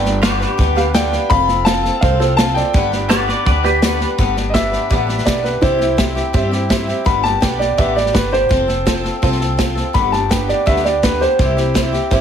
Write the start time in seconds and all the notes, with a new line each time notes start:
Already playing: G1 D5 G5
0.03 G3 B3 D4 B4, snare
0.22 G2 D3 G3 B3 D4 G4 B4 D5, snare, hi-hat pedal
0.40 G3 B3 D4 G4 B4, snare
0.58 D2 G3 B3 D4 B4, kick, snare
0.75 G3 B3 D4 G4 B4 F5, snare
0.94 G2 D3 G3 B3 D4 G4 B4 D5 F5 G5, snare, hi-hat pedal
1.12 G3 B3 D4 B4, snare
1.30 F1 F3 C4 F4 A4 F5 B5, kick, snare
1.47 C4 F4 A4, snare
1.65 F3 C4 F4 A4 C5 F5 A5, snare, hi-hat pedal
1.83 C4 F4 A4, snare
2.01 C2 F3 C4 F4 A4 C5 F5, kick, snare
2.19 C4 F4 A4 C5, snare
2.37 F3 C4 F4 A4 C5 F5 A5, snare, hi-hat pedal
2.54 C4 F4 A4 D5 G5, snare
2.73 G1 G2 D3 G3 B3 D4 B4, kick, snare
2.92 G3 B3 D4 B4, snare
3.09 G2 D3 G3 B3 D4 G4 B4 D5, snare, hi-hat pedal
3.27 G3 B3 D4 B4 D5, snare
3.45 D2 G3 B3 D4 B4 D5, kick, snare
3.63 G3 B3 D4 G4 B4 D5, snare
3.82 G2 D3 G3 B3 D4 G4 B4 D5, snare, hi-hat pedal
3.99 G3 B3 D4 B4, snare
4.18 G1 G2 D3 G3 B3 D4 B4, kick, snare
4.36 G3 B3 D4 B4, snare
4.50 G3 D#5
4.54 B3 D4 G4 B4 D5 E5, kick, snare, hi-hat pedal
4.72 G3 B3 D4 B4, snare
4.90 A1 G2 D3 G3 B3 D4 G4 B4 D5, kick, snare
5.07 G3 B3 D4 B4, snare
5.18 snare
5.25 B1 G3 B3 D4 G4 B4 D5 E5, kick, snare, hi-hat pedal
5.43 G3 B3 D4 B4, snare
5.61 C2 C3 G3 C4 E4 G4 C5, kick, snare
5.79 C4 E4 G4, snare
5.97 G3 C4 E4 G4 C5 E5, kick, snare, hi-hat pedal
6.15 C4 E4 G4, snare
6.33 G2 C3 G3 C4 E4 G4 C5 E5, kick, snare
6.51 C4 E4 G4, snare
6.70 E4 G4 C5 E5, kick, snare, hi-hat pedal
6.87 C4 E4 G4, snare
7.05 G1 G2 D3 G3 B3 D4 G4 B5, kick, snare
7.23 G3 B3 D4 G4 A5, snare
7.41 B1 G3 B3 D4 G4 B4 D5 G5, kick, snare, hi-hat pedal
7.59 G3 B3 D4 G4 D5, snare
7.77 A1 G2 D3 G3 B3 D4 G4 B4 D5 E5, kick, snare
7.95 G3 B3 D4 G4 D5, snare
8.06 snare
8.13 G1 G3 B3 D4 G4 B4 D5, kick, snare, hi-hat pedal
8.31 G3 B3 D4 G4 C5, snare
8.49 F1 F3 C4 F4 A4, kick, snare
8.68 C4 F4 A4, snare
8.86 F3 C4 F4 A4 C5, kick, snare, hi-hat pedal
9.03 C4 F4 A4, snare
9.22 C2 F3 C4 F4 A4 C5, kick, snare
9.32 snare
9.40 C4 F4 A4, snare
9.57 F3 C4 F4 A4 C5, kick, snare, hi-hat pedal
9.75 C4 F4 A4, snare
9.93 G1 G2 D3 G3 B3 D4 G4 B5, kick, snare
10.11 G3 B3 D4 G4 A5, snare
10.29 G3 B3 D4 G4 B4 G5, kick, snare, hi-hat pedal
10.48 G3 B3 D4 G4 D5, snare
10.66 D2 G2 D3 G3 B3 D4 G4 B4 E5, kick, snare
10.76 snare
10.84 G3 B3 D4 G4 D5, snare
11.02 G3 B3 D4 G4 B4, kick, snare, hi-hat pedal
11.20 G3 B3 D4 G4 C5, snare
11.39 C2 C3 G3 C4 E4 G4, kick, snare
11.57 C4 E4 G4, snare
11.74 G3 C4 E4 G4 C5, kick, snare, hi-hat pedal
11.93 C4 E4 G4, snare
12.11 G1 C3 G3 C4 E4 G4 C5, kick, snare